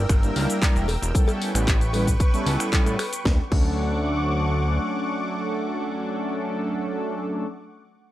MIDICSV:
0, 0, Header, 1, 5, 480
1, 0, Start_track
1, 0, Key_signature, 2, "major"
1, 0, Tempo, 526316
1, 1048, Time_signature, 4, 2, 24, 8
1, 7405, End_track
2, 0, Start_track
2, 0, Title_t, "Analog synth pad"
2, 0, Program_c, 0, 89
2, 0, Note_on_c, 0, 70, 80
2, 0, Note_on_c, 0, 79, 73
2, 0, Note_on_c, 0, 88, 88
2, 1009, Note_off_c, 0, 88, 0
2, 1027, Note_off_c, 0, 70, 0
2, 1051, Note_on_c, 0, 71, 83
2, 1051, Note_on_c, 0, 85, 92
2, 2933, Note_off_c, 0, 79, 0
2, 2950, Note_off_c, 0, 71, 0
2, 2950, Note_off_c, 0, 85, 0
2, 2972, Note_on_c, 0, 86, 90
2, 2973, Note_on_c, 0, 78, 75
2, 2974, Note_on_c, 0, 85, 81
2, 6567, Note_off_c, 0, 86, 0
2, 6568, Note_off_c, 0, 78, 0
2, 6569, Note_off_c, 0, 85, 0
2, 7405, End_track
3, 0, Start_track
3, 0, Title_t, "Analog polysynth"
3, 0, Program_c, 1, 90
3, 206, Note_on_c, 1, 55, 99
3, 208, Note_on_c, 1, 58, 92
3, 210, Note_on_c, 1, 62, 86
3, 212, Note_on_c, 1, 64, 90
3, 215, Note_on_c, 1, 70, 108
3, 537, Note_off_c, 1, 55, 0
3, 538, Note_off_c, 1, 58, 0
3, 539, Note_off_c, 1, 62, 0
3, 540, Note_off_c, 1, 64, 0
3, 542, Note_off_c, 1, 70, 0
3, 564, Note_on_c, 1, 55, 91
3, 567, Note_on_c, 1, 58, 83
3, 570, Note_on_c, 1, 62, 85
3, 572, Note_on_c, 1, 64, 82
3, 572, Note_on_c, 1, 70, 100
3, 781, Note_off_c, 1, 55, 0
3, 783, Note_off_c, 1, 58, 0
3, 784, Note_off_c, 1, 62, 0
3, 785, Note_off_c, 1, 64, 0
3, 785, Note_off_c, 1, 70, 0
3, 1042, Note_on_c, 1, 55, 84
3, 1043, Note_on_c, 1, 59, 77
3, 1047, Note_on_c, 1, 61, 75
3, 1049, Note_on_c, 1, 64, 77
3, 1051, Note_on_c, 1, 69, 94
3, 1379, Note_off_c, 1, 55, 0
3, 1379, Note_off_c, 1, 59, 0
3, 1381, Note_off_c, 1, 61, 0
3, 1382, Note_off_c, 1, 64, 0
3, 1383, Note_off_c, 1, 69, 0
3, 1408, Note_on_c, 1, 55, 77
3, 1410, Note_on_c, 1, 59, 73
3, 1412, Note_on_c, 1, 61, 72
3, 1414, Note_on_c, 1, 64, 71
3, 1416, Note_on_c, 1, 71, 88
3, 1623, Note_off_c, 1, 55, 0
3, 1624, Note_off_c, 1, 59, 0
3, 1626, Note_off_c, 1, 61, 0
3, 1626, Note_off_c, 1, 64, 0
3, 1627, Note_off_c, 1, 71, 0
3, 1765, Note_on_c, 1, 55, 98
3, 1767, Note_on_c, 1, 59, 89
3, 1768, Note_on_c, 1, 61, 91
3, 1771, Note_on_c, 1, 64, 89
3, 1773, Note_on_c, 1, 71, 109
3, 1903, Note_off_c, 1, 55, 0
3, 1904, Note_off_c, 1, 59, 0
3, 1905, Note_off_c, 1, 61, 0
3, 1907, Note_off_c, 1, 64, 0
3, 1907, Note_off_c, 1, 71, 0
3, 2128, Note_on_c, 1, 55, 95
3, 2129, Note_on_c, 1, 59, 87
3, 2132, Note_on_c, 1, 61, 88
3, 2133, Note_on_c, 1, 64, 88
3, 2137, Note_on_c, 1, 69, 107
3, 2458, Note_off_c, 1, 55, 0
3, 2458, Note_off_c, 1, 59, 0
3, 2460, Note_off_c, 1, 61, 0
3, 2461, Note_off_c, 1, 64, 0
3, 2463, Note_off_c, 1, 69, 0
3, 2484, Note_on_c, 1, 55, 92
3, 2486, Note_on_c, 1, 59, 81
3, 2489, Note_on_c, 1, 61, 83
3, 2491, Note_on_c, 1, 64, 84
3, 2494, Note_on_c, 1, 69, 98
3, 2701, Note_off_c, 1, 55, 0
3, 2702, Note_off_c, 1, 59, 0
3, 2704, Note_off_c, 1, 61, 0
3, 2705, Note_off_c, 1, 64, 0
3, 2706, Note_off_c, 1, 69, 0
3, 2952, Note_on_c, 1, 54, 86
3, 2959, Note_on_c, 1, 57, 78
3, 2967, Note_on_c, 1, 61, 80
3, 2972, Note_on_c, 1, 62, 76
3, 2980, Note_on_c, 1, 69, 95
3, 3096, Note_off_c, 1, 54, 0
3, 3100, Note_off_c, 1, 57, 0
3, 3104, Note_off_c, 1, 61, 0
3, 3107, Note_off_c, 1, 62, 0
3, 3111, Note_off_c, 1, 69, 0
3, 3192, Note_on_c, 1, 54, 87
3, 3199, Note_on_c, 1, 57, 80
3, 3204, Note_on_c, 1, 61, 81
3, 3212, Note_on_c, 1, 62, 80
3, 3219, Note_on_c, 1, 69, 97
3, 6786, Note_off_c, 1, 54, 0
3, 6793, Note_off_c, 1, 57, 0
3, 6799, Note_off_c, 1, 61, 0
3, 6807, Note_off_c, 1, 62, 0
3, 6813, Note_off_c, 1, 69, 0
3, 7405, End_track
4, 0, Start_track
4, 0, Title_t, "Analog synth bass"
4, 0, Program_c, 2, 38
4, 86, Note_on_c, 2, 31, 91
4, 287, Note_off_c, 2, 31, 0
4, 329, Note_on_c, 2, 37, 100
4, 431, Note_off_c, 2, 37, 0
4, 690, Note_on_c, 2, 28, 102
4, 888, Note_off_c, 2, 28, 0
4, 931, Note_on_c, 2, 28, 95
4, 1028, Note_off_c, 2, 28, 0
4, 1409, Note_on_c, 2, 33, 100
4, 1975, Note_off_c, 2, 33, 0
4, 2247, Note_on_c, 2, 37, 88
4, 2350, Note_off_c, 2, 37, 0
4, 2608, Note_on_c, 2, 45, 88
4, 2706, Note_off_c, 2, 45, 0
4, 2968, Note_on_c, 2, 38, 96
4, 3104, Note_off_c, 2, 38, 0
4, 3206, Note_on_c, 2, 38, 97
4, 4371, Note_off_c, 2, 38, 0
4, 7405, End_track
5, 0, Start_track
5, 0, Title_t, "Drums"
5, 86, Note_on_c, 9, 26, 68
5, 86, Note_on_c, 9, 36, 117
5, 86, Note_on_c, 9, 42, 82
5, 90, Note_on_c, 9, 82, 60
5, 177, Note_off_c, 9, 26, 0
5, 177, Note_off_c, 9, 36, 0
5, 177, Note_off_c, 9, 42, 0
5, 181, Note_off_c, 9, 82, 0
5, 211, Note_on_c, 9, 42, 39
5, 215, Note_on_c, 9, 82, 36
5, 303, Note_off_c, 9, 42, 0
5, 306, Note_off_c, 9, 82, 0
5, 329, Note_on_c, 9, 46, 104
5, 420, Note_off_c, 9, 46, 0
5, 453, Note_on_c, 9, 42, 56
5, 457, Note_on_c, 9, 82, 72
5, 544, Note_off_c, 9, 42, 0
5, 548, Note_off_c, 9, 82, 0
5, 566, Note_on_c, 9, 36, 117
5, 570, Note_on_c, 9, 42, 82
5, 573, Note_on_c, 9, 39, 121
5, 573, Note_on_c, 9, 82, 60
5, 657, Note_off_c, 9, 36, 0
5, 661, Note_off_c, 9, 42, 0
5, 664, Note_off_c, 9, 39, 0
5, 665, Note_off_c, 9, 82, 0
5, 694, Note_on_c, 9, 42, 37
5, 697, Note_on_c, 9, 82, 35
5, 785, Note_off_c, 9, 42, 0
5, 789, Note_off_c, 9, 82, 0
5, 802, Note_on_c, 9, 56, 82
5, 810, Note_on_c, 9, 46, 102
5, 893, Note_off_c, 9, 56, 0
5, 901, Note_off_c, 9, 46, 0
5, 935, Note_on_c, 9, 42, 55
5, 939, Note_on_c, 9, 82, 70
5, 1027, Note_off_c, 9, 42, 0
5, 1030, Note_off_c, 9, 82, 0
5, 1046, Note_on_c, 9, 36, 116
5, 1051, Note_on_c, 9, 42, 83
5, 1054, Note_on_c, 9, 82, 59
5, 1138, Note_off_c, 9, 36, 0
5, 1142, Note_off_c, 9, 42, 0
5, 1145, Note_off_c, 9, 82, 0
5, 1164, Note_on_c, 9, 56, 97
5, 1173, Note_on_c, 9, 42, 40
5, 1177, Note_on_c, 9, 82, 35
5, 1255, Note_off_c, 9, 56, 0
5, 1264, Note_off_c, 9, 42, 0
5, 1268, Note_off_c, 9, 82, 0
5, 1291, Note_on_c, 9, 46, 104
5, 1382, Note_off_c, 9, 46, 0
5, 1415, Note_on_c, 9, 26, 61
5, 1415, Note_on_c, 9, 42, 57
5, 1418, Note_on_c, 9, 82, 72
5, 1506, Note_off_c, 9, 26, 0
5, 1506, Note_off_c, 9, 42, 0
5, 1509, Note_off_c, 9, 82, 0
5, 1527, Note_on_c, 9, 36, 113
5, 1532, Note_on_c, 9, 42, 84
5, 1535, Note_on_c, 9, 39, 122
5, 1535, Note_on_c, 9, 82, 59
5, 1618, Note_off_c, 9, 36, 0
5, 1623, Note_off_c, 9, 42, 0
5, 1626, Note_off_c, 9, 39, 0
5, 1626, Note_off_c, 9, 82, 0
5, 1653, Note_on_c, 9, 42, 38
5, 1656, Note_on_c, 9, 82, 35
5, 1744, Note_off_c, 9, 42, 0
5, 1748, Note_off_c, 9, 82, 0
5, 1762, Note_on_c, 9, 56, 62
5, 1768, Note_on_c, 9, 46, 102
5, 1853, Note_off_c, 9, 56, 0
5, 1859, Note_off_c, 9, 46, 0
5, 1890, Note_on_c, 9, 36, 59
5, 1892, Note_on_c, 9, 42, 56
5, 1896, Note_on_c, 9, 82, 74
5, 1981, Note_off_c, 9, 36, 0
5, 1983, Note_off_c, 9, 42, 0
5, 1987, Note_off_c, 9, 82, 0
5, 2006, Note_on_c, 9, 36, 119
5, 2009, Note_on_c, 9, 42, 87
5, 2013, Note_on_c, 9, 82, 60
5, 2098, Note_off_c, 9, 36, 0
5, 2100, Note_off_c, 9, 42, 0
5, 2104, Note_off_c, 9, 82, 0
5, 2133, Note_on_c, 9, 42, 39
5, 2136, Note_on_c, 9, 82, 35
5, 2224, Note_off_c, 9, 42, 0
5, 2227, Note_off_c, 9, 82, 0
5, 2248, Note_on_c, 9, 46, 107
5, 2339, Note_off_c, 9, 46, 0
5, 2372, Note_on_c, 9, 26, 67
5, 2372, Note_on_c, 9, 42, 59
5, 2376, Note_on_c, 9, 82, 73
5, 2463, Note_off_c, 9, 26, 0
5, 2463, Note_off_c, 9, 42, 0
5, 2467, Note_off_c, 9, 82, 0
5, 2487, Note_on_c, 9, 36, 119
5, 2488, Note_on_c, 9, 42, 88
5, 2492, Note_on_c, 9, 39, 123
5, 2492, Note_on_c, 9, 82, 60
5, 2578, Note_off_c, 9, 36, 0
5, 2580, Note_off_c, 9, 42, 0
5, 2583, Note_off_c, 9, 39, 0
5, 2583, Note_off_c, 9, 82, 0
5, 2612, Note_on_c, 9, 42, 39
5, 2616, Note_on_c, 9, 82, 36
5, 2704, Note_off_c, 9, 42, 0
5, 2707, Note_off_c, 9, 82, 0
5, 2728, Note_on_c, 9, 26, 81
5, 2728, Note_on_c, 9, 46, 105
5, 2730, Note_on_c, 9, 56, 77
5, 2820, Note_off_c, 9, 26, 0
5, 2820, Note_off_c, 9, 46, 0
5, 2821, Note_off_c, 9, 56, 0
5, 2851, Note_on_c, 9, 42, 56
5, 2855, Note_on_c, 9, 82, 72
5, 2942, Note_off_c, 9, 42, 0
5, 2946, Note_off_c, 9, 82, 0
5, 2967, Note_on_c, 9, 36, 114
5, 2969, Note_on_c, 9, 38, 85
5, 3058, Note_off_c, 9, 36, 0
5, 3060, Note_off_c, 9, 38, 0
5, 3207, Note_on_c, 9, 36, 114
5, 3207, Note_on_c, 9, 49, 88
5, 3298, Note_off_c, 9, 36, 0
5, 3299, Note_off_c, 9, 49, 0
5, 7405, End_track
0, 0, End_of_file